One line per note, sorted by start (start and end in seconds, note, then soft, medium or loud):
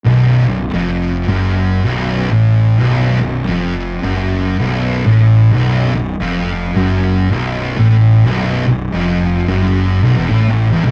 0.05 0.44 B0 loud
0.05 0.46 B1 loud
0.47 0.71 B0 medium
0.47 0.68 B1 medium
0.73 1.25 F1 medium
0.73 1.28 F2 loud
1.29 1.81 F#1 medium
1.29 1.83 F#2 loud
1.85 2.28 B0 medium
1.85 2.31 B1 loud
2.32 2.76 A1 medium
2.32 2.78 A2 medium
2.79 3.18 B0 medium
2.79 3.21 B1 loud
3.21 3.46 B0 medium
3.21 3.43 B1 medium
3.48 3.99 F1 medium
3.48 4.03 F2 loud
4.03 4.55 F#1 medium
4.03 4.57 F#2 loud
4.59 5.03 B0 medium
4.59 5.04 B1 loud
5.06 5.50 A1 medium
5.06 5.52 A2 medium
5.52 5.92 B0 medium
5.52 5.93 B1 loud
5.95 6.19 B0 medium
5.95 6.16 B1 medium
6.20 6.72 F1 medium
6.20 6.75 F2 loud
6.76 7.27 F#1 medium
6.76 7.30 F#2 loud
7.31 7.76 B0 medium
7.31 7.77 B1 loud
7.78 8.22 A1 medium
7.78 8.24 A2 medium
8.25 8.65 B0 loud
8.25 8.66 B1 loud
8.67 8.92 B0 medium
8.67 8.88 B1 medium
8.92 9.45 F1 medium
8.92 9.47 F2 medium
9.48 10.00 F#1 medium
9.48 10.02 F#2 loud
10.04 10.16 B0 medium
10.04 10.16 B1 loud
10.16 10.29 E1 medium
10.16 10.29 E2 loud
10.29 10.49 A1 loud
10.29 10.49 A2 loud
10.50 10.69 A1 medium
10.50 10.71 A2 medium
10.70 10.82 E1 medium
10.70 10.85 E2 medium
10.83 10.91 B0 medium
10.83 10.91 B1 medium